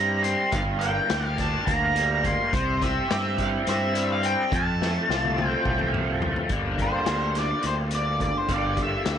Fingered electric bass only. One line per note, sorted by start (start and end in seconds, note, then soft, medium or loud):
0.00 0.34 G2 medium
0.53 0.98 G1 loud
1.10 1.55 D2 loud
1.67 2.35 D2 medium
2.53 2.98 C2 loud
3.11 3.56 G2 medium
3.67 4.35 G2 medium
4.52 4.97 F2 loud
5.09 5.54 C2 medium
5.66 6.33 C2 medium
6.49 6.95 G1 medium
7.07 7.52 D2 medium
7.64 8.31 D2 medium
8.49 8.94 G1 medium
9.06 9.18 D2 medium